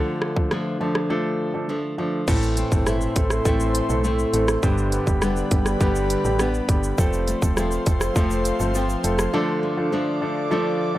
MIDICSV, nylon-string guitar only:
0, 0, Header, 1, 2, 480
1, 0, Start_track
1, 0, Key_signature, 0, "minor"
1, 0, Tempo, 588235
1, 1858, Time_signature, 4, 2, 24, 8
1, 8962, End_track
2, 0, Start_track
2, 0, Title_t, "Nylon-string guitar"
2, 0, Program_c, 0, 24
2, 0, Note_on_c, 0, 50, 84
2, 0, Note_on_c, 0, 53, 60
2, 0, Note_on_c, 0, 57, 65
2, 416, Note_off_c, 0, 53, 0
2, 419, Note_on_c, 0, 53, 63
2, 421, Note_off_c, 0, 57, 0
2, 425, Note_on_c, 0, 57, 62
2, 429, Note_on_c, 0, 62, 69
2, 649, Note_off_c, 0, 53, 0
2, 659, Note_on_c, 0, 53, 61
2, 895, Note_off_c, 0, 57, 0
2, 899, Note_on_c, 0, 57, 63
2, 1369, Note_off_c, 0, 53, 0
2, 1379, Note_off_c, 0, 62, 0
2, 1379, Note_on_c, 0, 53, 64
2, 1380, Note_off_c, 0, 57, 0
2, 1384, Note_on_c, 0, 57, 61
2, 1389, Note_on_c, 0, 62, 66
2, 1609, Note_off_c, 0, 53, 0
2, 1619, Note_on_c, 0, 53, 60
2, 1858, Note_on_c, 0, 45, 85
2, 1859, Note_off_c, 0, 50, 0
2, 1860, Note_off_c, 0, 62, 0
2, 1863, Note_on_c, 0, 64, 70
2, 1907, Note_off_c, 0, 53, 0
2, 2096, Note_off_c, 0, 57, 0
2, 2099, Note_on_c, 0, 60, 61
2, 2333, Note_off_c, 0, 60, 0
2, 2338, Note_off_c, 0, 64, 0
2, 2338, Note_on_c, 0, 57, 66
2, 2343, Note_on_c, 0, 60, 66
2, 2348, Note_on_c, 0, 64, 73
2, 2808, Note_off_c, 0, 57, 0
2, 2813, Note_off_c, 0, 60, 0
2, 2818, Note_off_c, 0, 64, 0
2, 2818, Note_on_c, 0, 57, 62
2, 2823, Note_on_c, 0, 60, 61
2, 2828, Note_on_c, 0, 64, 71
2, 3288, Note_off_c, 0, 57, 0
2, 3293, Note_off_c, 0, 60, 0
2, 3297, Note_off_c, 0, 64, 0
2, 3298, Note_on_c, 0, 57, 66
2, 3303, Note_on_c, 0, 60, 64
2, 3307, Note_on_c, 0, 64, 67
2, 3775, Note_off_c, 0, 45, 0
2, 3778, Note_on_c, 0, 43, 85
2, 3780, Note_off_c, 0, 64, 0
2, 3783, Note_on_c, 0, 62, 70
2, 3826, Note_off_c, 0, 57, 0
2, 3829, Note_off_c, 0, 60, 0
2, 4018, Note_on_c, 0, 59, 61
2, 4253, Note_off_c, 0, 59, 0
2, 4257, Note_on_c, 0, 55, 64
2, 4258, Note_off_c, 0, 62, 0
2, 4263, Note_on_c, 0, 59, 66
2, 4268, Note_on_c, 0, 62, 69
2, 4728, Note_off_c, 0, 55, 0
2, 4732, Note_off_c, 0, 59, 0
2, 4737, Note_off_c, 0, 62, 0
2, 4737, Note_on_c, 0, 55, 64
2, 4742, Note_on_c, 0, 59, 65
2, 4747, Note_on_c, 0, 62, 69
2, 5209, Note_off_c, 0, 55, 0
2, 5214, Note_off_c, 0, 59, 0
2, 5218, Note_off_c, 0, 62, 0
2, 5218, Note_on_c, 0, 55, 65
2, 5223, Note_on_c, 0, 59, 64
2, 5228, Note_on_c, 0, 62, 71
2, 5698, Note_off_c, 0, 43, 0
2, 5700, Note_off_c, 0, 62, 0
2, 5703, Note_on_c, 0, 60, 71
2, 5746, Note_off_c, 0, 55, 0
2, 5749, Note_off_c, 0, 59, 0
2, 5939, Note_on_c, 0, 57, 61
2, 6178, Note_off_c, 0, 60, 0
2, 6178, Note_on_c, 0, 53, 67
2, 6179, Note_off_c, 0, 57, 0
2, 6183, Note_on_c, 0, 57, 66
2, 6188, Note_on_c, 0, 60, 68
2, 6654, Note_off_c, 0, 53, 0
2, 6658, Note_off_c, 0, 60, 0
2, 6658, Note_on_c, 0, 53, 65
2, 6659, Note_off_c, 0, 57, 0
2, 6662, Note_on_c, 0, 57, 64
2, 6668, Note_on_c, 0, 60, 73
2, 7134, Note_off_c, 0, 53, 0
2, 7138, Note_off_c, 0, 60, 0
2, 7138, Note_on_c, 0, 53, 66
2, 7139, Note_off_c, 0, 57, 0
2, 7143, Note_on_c, 0, 57, 64
2, 7148, Note_on_c, 0, 60, 71
2, 7617, Note_on_c, 0, 50, 86
2, 7619, Note_off_c, 0, 60, 0
2, 7622, Note_on_c, 0, 62, 73
2, 7855, Note_off_c, 0, 57, 0
2, 7858, Note_on_c, 0, 57, 62
2, 8094, Note_off_c, 0, 53, 0
2, 8097, Note_off_c, 0, 62, 0
2, 8097, Note_on_c, 0, 53, 66
2, 8099, Note_off_c, 0, 57, 0
2, 8102, Note_on_c, 0, 57, 68
2, 8107, Note_on_c, 0, 62, 74
2, 8568, Note_off_c, 0, 53, 0
2, 8578, Note_off_c, 0, 62, 0
2, 8578, Note_on_c, 0, 53, 63
2, 8580, Note_off_c, 0, 57, 0
2, 8583, Note_on_c, 0, 57, 61
2, 8588, Note_on_c, 0, 62, 71
2, 8962, Note_off_c, 0, 50, 0
2, 8962, Note_off_c, 0, 53, 0
2, 8962, Note_off_c, 0, 57, 0
2, 8962, Note_off_c, 0, 62, 0
2, 8962, End_track
0, 0, End_of_file